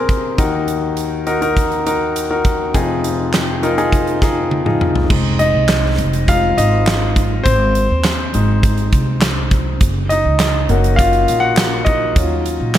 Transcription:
Already playing: C4 G#4 A#4
0.09 kick, closed hi-hat
0.38 D#2 D#3 D#4 F#4 A#4, kick, closed hi-hat
0.68 closed hi-hat
0.97 closed hi-hat
1.27 D#4 F#4 A#4, closed hi-hat
1.42 D#4 F#4 A#4, closed hi-hat
1.57 kick, closed hi-hat
1.72 closed hi-hat
1.86 D#4 F#4 A#4, closed hi-hat
2.16 closed hi-hat
2.30 D#4 F#4 A#4
2.45 kick, closed hi-hat
2.74 F1 F2 D#4 F4 G#4, kick, closed hi-hat
3.04 closed hi-hat
3.33 snare, clap, closed hi-hat
3.63 D#4 F4 A#4, closed hi-hat
3.78 D#4 F4 G#4, closed hi-hat
3.92 kick, closed hi-hat
4.07 closed hi-hat
4.22 D#4 F4 G#4, kick, snare, closed hi-hat
4.51 high tom
4.66 D#4 F4 G#4, mid tom
4.81 mid tom
4.95 floor tom
5.10 F1 G#3 C4 D#4, kick, crash
5.39 D#4 D#5, closed hi-hat
5.54 C2
5.68 snare, clap, closed hi-hat
5.98 F1, closed hi-hat
6.13 closed hi-hat
6.28 G#3 C4 D#4 F4 F5, kick, closed hi-hat
6.58 G#1 D#4 D#5, closed hi-hat
6.87 snare, clap, closed hi-hat
7.16 kick, closed hi-hat
7.44 G#1 C4 C5, kick, closed hi-hat
7.75 closed hi-hat
7.90 D#2
8.04 snare, clap, closed hi-hat
8.34 G#1 G#3 C4 D#4, closed hi-hat
8.63 kick, closed hi-hat
8.78 closed hi-hat
8.93 C2, kick, closed hi-hat
9.22 snare, clap, closed hi-hat
9.51 kick, closed hi-hat
9.81 F#1, kick, closed hi-hat
10.09 D#4 D#5, closed hi-hat
10.25 C#2
10.39 snare, clap, closed hi-hat
10.69 F#1 A#3 C#4 F#4, closed hi-hat
10.84 closed hi-hat
10.96 F4 F5, kick, closed hi-hat
11.13 closed hi-hat
11.28 A#1, closed hi-hat
11.40 F#5
11.44 F#4
11.57 snare, clap, closed hi-hat
11.85 D#4 D#5, kick, closed hi-hat
12.16 D#2 F#3 C#4 F4, kick, closed hi-hat
12.46 closed hi-hat
12.60 A#2
12.74 clap, closed hi-hat

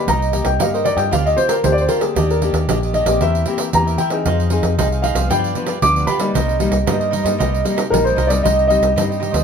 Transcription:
Already playing: A#3 D#4 G4
0.07 C2 C3 D#4 A#4 C5 D#5 A#5, pandeiro
0.22 pandeiro
0.32 A#3 D#4 G4 A#4 C5 D#5, pandeiro
0.45 C2 G5, pandeiro
0.59 G2 A#3 D#4 G4 A#4 C5 D#5 F5, pandeiro
0.74 A#4 C5 D#5, pandeiro
0.84 D#4 A#4 C5 D5 D#5, pandeiro
0.96 G2 C4 F4 G4 A#4 C5 D#5 G5, pandeiro
1.11 D2 D3 F4 G4 C5 D5 F5, pandeiro
1.26 D#5, pandeiro
1.37 C4 F4 G4 C5 D5, pandeiro
1.49 F4 G4 A#4 C5 D5, pandeiro
1.63 D2 D3 C4 F4 G4 C5, pandeiro
1.72 D5
1.77 G4 C5 D5, pandeiro
1.88 F4 G4 A#4 C5 D5, pandeiro
2.01 A#3 D4 G4 G#4 C5 D5, pandeiro
2.15 D#2 D#3 D4 G4 D5 D#5, pandeiro
2.30 A#4, pandeiro
2.42 A#3 D4 G4 D5 D#5, pandeiro
2.53 D#2, pandeiro
2.68 A#1 A#2 A#3 D4 G4 D5 D#5, pandeiro
2.83 G4 D5 D#5, pandeiro
2.93 D4 G4 D5 D#5, pandeiro
3.06 A#1 A#3 C4 G4 D5 D#5, pandeiro
3.21 E2 E3 E4 A#4 C5 E5, pandeiro
3.35 pandeiro
3.46 A#3 C4 E4 G4 A#4 C5 E5, pandeiro
3.58 E4 A#4 C5 E5, pandeiro
3.73 E2 E3 A#3 C4 G4 A#5, pandeiro
3.87 A#4 C5 E5, pandeiro
3.98 E4 A#4 C5 E5 G5, pandeiro
4.10 C4 D#4 G#4 A#4 C5 E5, pandeiro
4.25 F2 F3 D#4 G#4 C5 F5, pandeiro
4.40 pandeiro
4.50 C4 D#4 G#4 C5 F5, pandeiro
4.63 F2, pandeiro
4.78 C2 C3 C4 D#4 G#4 C5 F5, pandeiro
4.92 G#4 C5 F5, pandeiro
5.02 D#4 G#4 C5 F5, pandeiro
5.15 C2 F3 B3 D4 G#4 C5 F5, pandeiro
5.30 G2 F4 G4 B4 D5 G5, pandeiro
5.44 pandeiro
5.55 F3 B3 D4 F4 G4 B4 D5, pandeiro
5.66 F4 G4 B4 D5, pandeiro
5.82 D2 D3 F3 B3 D4 D6, pandeiro
5.96 G4 B4 D5, pandeiro
6.07 F4 G4 B4 D5 B5, pandeiro
6.19 G3 A#3 D#4 G4 B4 D5, pandeiro
6.34 C2 C3 D#4 A#4 C5 D#5, pandeiro
6.49 pandeiro
6.59 G3 A#3 D#4 A#4 C5 D#5, pandeiro
6.71 C2, pandeiro
6.87 G2 G3 A#3 D#4 A#4 C5 D#5, pandeiro
7.00 A#4 C5 D#5, pandeiro
7.11 D#4 A#4 C5 D#5, pandeiro
7.23 G2 G3 A#3 D#4 A#4 C5 D#5, pandeiro
7.38 C2 C3 D#4 A#4 C5 D#5, pandeiro
7.54 pandeiro
7.65 G3 A#3 D#4 A#4 C5 D#5, pandeiro
7.76 D#4 A#4 C5 D#5, pandeiro
7.90 A#1 G2 G3 A#3 D#4 A#4, pandeiro
8.04 A#4 C5 D#5, pandeiro
8.16 C2 D#4 A#4 C5 D#5, pandeiro
8.27 G3 C4 D#4 A#4 C5 D5 D#5, pandeiro
8.43 C2 C3 D#4 G4 C5 D#5, pandeiro
8.59 pandeiro
8.67 G3 C4 D#4 G4 C5 D#5, pandeiro
8.81 C2, pandeiro
8.96 G2 G3 C4 D#4 G4 C5 D#5, pandeiro
9.09 G4 C5 D#5, pandeiro
9.20 D#4 G4 C5 D#5, pandeiro
9.31 D2 F3 B3 D4 G4 C5 D#5, pandeiro

